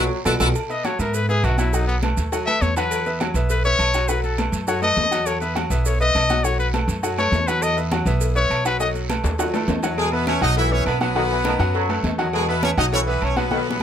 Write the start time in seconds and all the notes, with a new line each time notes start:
Already playing: F#3
0.25 B1 F#4 A4 B4, cowbell, high conga, high timbale, claves, maracas
0.40 B1 D#3 F#4 A4 B4, cowbell, high conga, high timbale, long guiro, claves, maracas
0.55 cowbell, low agogo, long guiro, claves, maracas
0.70 B3 B4 D#5 E5, high conga, low agogo, maracas
0.84 F#3 F#4 C#5 F#5, cowbell, high conga, low agogo, short guiro, claves, maracas
0.99 G#2 B3 A#4 B4 E5, cowbell, high conga, short guiro, maracas
1.14 B4, cowbell, high conga, low agogo, long guiro, maracas
1.29 B3 G#4 B4 E5, high conga, maracas
1.43 B1 F#4, cowbell, high conga, low timbale, low agogo, short guiro, claves, maracas
1.58 F#3 E4 F#4 F#5, high conga, low agogo, short guiro, maracas
1.73 F#3 D#4 F#4 F#5, cowbell, high conga, long guiro, maracas
1.87 B3, high conga, low agogo, maracas
2.03 A3 A4 B4, cowbell, high conga, low agogo, short guiro, claves, maracas
2.17 D#2, cowbell, high conga, short guiro, maracas
2.32 F#3 F#4 F#5, cowbell, high conga, low agogo, long guiro, maracas
2.47 A3 A4 B4 E5, high conga, low agogo, claves, maracas
2.61 E2 C#5, cowbell, high conga, short guiro, maracas
2.76 F#3 F#4 B4 F#5, cowbell, high conga, low agogo, short guiro, maracas
2.91 cowbell, high conga, low agogo, long guiro, claves, maracas
3.06 B3 B4 E5, high conga, low agogo, maracas
3.20 F#3 F#4 F#5, cowbell, high conga, low agogo, short guiro, claves, maracas
3.34 B1 B3 B4 E5, cowbell, high conga, short guiro, maracas
3.50 B4, cowbell, high conga, low agogo, long guiro, maracas
3.64 B3 B4 C#5 E5, high conga, maracas
3.79 B1, cowbell, high conga, low agogo, short guiro, claves, maracas
3.94 F#3 F#4 F#5, low agogo, short guiro, maracas
4.08 F#3 F#4 B4 F#5, cowbell, high conga, long guiro, maracas
4.24 A4, high conga, low agogo, maracas
4.38 A3 A4 B4, cowbell, high conga, low agogo, short guiro, claves, maracas
4.52 F#2, cowbell, high conga, short guiro, maracas
4.68 F#3 F#4 C#5 F#5, cowbell, high conga, low agogo, long guiro, maracas
4.82 A3 A4 B4 D#5, high conga, low agogo, claves, maracas
4.97 E2, cowbell, high conga, low timbale, short guiro, maracas
5.11 F#3 F#4 F#5, cowbell, high conga, low agogo, short guiro, maracas
5.26 C#5, cowbell, high conga, low agogo, long guiro, claves, maracas
5.41 B3 B4 E5, high conga, low agogo, maracas
5.55 F#3 F#4 F#5, cowbell, high conga, low agogo, short guiro, claves, maracas
5.70 B1 B3 B4 E5, cowbell, high conga, short guiro, maracas
5.85 C#5, cowbell, high conga, low agogo, long guiro, maracas
6.00 B3 B4 D#5 E5, high conga, maracas
6.15 B1, cowbell, high conga, low timbale, low agogo, short guiro, claves, maracas
6.29 F#3 F#4 F#5, high conga, low agogo, short guiro, maracas
6.44 F#3 F#4 C#5 F#5, cowbell, long guiro, maracas
6.59 B4, high conga, low agogo, maracas
6.73 A3 A4 B4, cowbell, high conga, low agogo, short guiro, claves, maracas
6.88 F#2, cowbell, high conga, short guiro, maracas
7.03 F#3 F#4 F#5, cowbell, high conga, low agogo, long guiro, maracas
7.18 A3 A4 B4 C#5, high conga, low agogo, claves, maracas
7.32 E2, cowbell, high conga, low timbale, short guiro, maracas
7.47 F#3 F#4 B4 F#5, cowbell, high conga, low agogo, short guiro, maracas
7.62 D#5, cowbell, high conga, low agogo, long guiro, claves, maracas
7.77 B3 B4 E5, high conga, low agogo, maracas
7.92 F#3 F#4 F#5, cowbell, high conga, low agogo, short guiro, claves, maracas
8.06 B1 B3 B4 E5, cowbell, high conga, short guiro, maracas
8.21 cowbell, high conga, low agogo, long guiro, maracas
8.35 B3 B4 C#5 E5, high conga, maracas
8.49 B1, cowbell, high conga, low agogo, short guiro, claves, maracas
8.65 F#3 F#4 B4 F#5, low agogo, short guiro, maracas
8.80 F#3 F#4 D#5 F#5, cowbell, high conga, long guiro, maracas
8.95 high conga, low agogo, maracas
9.09 A3 A4 B4, cowbell, high conga, low agogo, short guiro, claves, maracas
9.24 D#2, cowbell, high bongo, high conga, short guiro, maracas
9.38 F#3 F#4 F#5, cowbell, high bongo, high conga, high timbale, low agogo, long guiro, maracas
9.54 A3 A4 B4, low bongo, high conga, high timbale, low agogo, claves, maracas
9.68 E2, cowbell, low bongo, high conga, low timbale, short guiro, maracas
9.83 F#3 F#4 F#5, cowbell, low bongo, high conga, low timbale, low agogo, short guiro, maracas
9.98 B2 G#3 G#4, cowbell, high conga, low agogo, long guiro, claves
10.12 B3 B4 E5, high conga, low agogo
10.27 B3 C#4 B4 C#5 E5, cowbell, high conga, low agogo, short guiro, claves
10.41 B1 F#3 D#4 F#4 D#5 F#5, cowbell, high conga, short guiro
10.56 E3 E4 E5, cowbell, high conga, low agogo, long guiro
10.71 B3 C#4 B4 C#5 E5, high conga
10.86 B1 B3 B4, cowbell, high conga, low timbale, low agogo, short guiro, claves
11.01 F#3 B3 F#4 B4 F#5, high conga, low agogo, short guiro
11.15 D#3 F#3 F#4 F#5, cowbell, high conga, long guiro
11.30 E3, high conga, low agogo
11.45 D#3 A3 A4 B4, cowbell, high conga, low agogo, short guiro, claves
11.59 F#2 F#3 F#4 F#5, cowbell, high conga, short guiro
11.75 F#3, cowbell, high conga, low agogo, long guiro
11.89 A3 A4 B4, high conga, low agogo, claves
12.03 E2, cowbell, high conga, low timbale, short guiro
12.18 D#3 F#3 F#4 F#5, cowbell, high conga, low agogo, short guiro
12.33 B2 G#3 G#4, cowbell, high conga, low agogo, long guiro, claves
12.48 B3 B4 E5, high conga, low agogo
12.63 B3 C#4 B4 C#5 E5, cowbell, high conga, low agogo, short guiro, claves
12.77 B1 F#3 D#4 F#4 D#5 F#5, cowbell, high conga, short guiro
12.92 E3 C#4 C#5, cowbell, high conga, low agogo
13.07 B3 B4 E5, high conga
13.21 B1 C#4 C#5, cowbell, high conga, low agogo, short guiro, claves
13.36 F#3 B3 F#4 B4 F#5, high conga, low agogo, short guiro
13.51 D#3 F#3 F#4 F#5, cowbell, high conga, long guiro
13.66 E3, low agogo
13.71 high conga